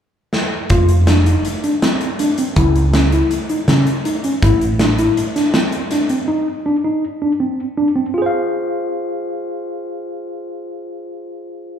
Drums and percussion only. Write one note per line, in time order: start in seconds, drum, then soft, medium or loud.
0.33 snare medium
0.70 kick medium
0.70 closed hi-hat medium
0.89 closed hi-hat medium
1.07 snare loud
1.07 closed hi-hat medium
1.26 closed hi-hat medium
1.45 closed hi-hat medium
1.64 closed hi-hat medium
1.82 snare medium
1.82 closed hi-hat medium
2.01 closed hi-hat medium
2.19 closed hi-hat medium
2.38 closed hi-hat medium
2.56 kick loud
2.56 closed hi-hat medium
2.76 closed hi-hat medium
2.94 snare loud
2.94 closed hi-hat medium
3.12 closed hi-hat medium
3.31 closed hi-hat medium
3.49 closed hi-hat medium
3.68 snare medium
3.68 closed hi-hat medium
3.87 closed hi-hat medium
4.05 closed hi-hat medium
4.24 closed hi-hat medium
4.42 kick loud
4.42 closed hi-hat medium
4.61 closed hi-hat medium
4.79 snare loud
4.79 closed hi-hat medium
4.98 closed hi-hat medium
5.17 closed hi-hat medium
5.36 snare soft
5.36 closed hi-hat medium
5.54 snare loud
5.54 closed hi-hat medium
5.72 closed hi-hat medium
5.91 snare soft
5.91 closed hi-hat medium
6.09 closed hi-hat medium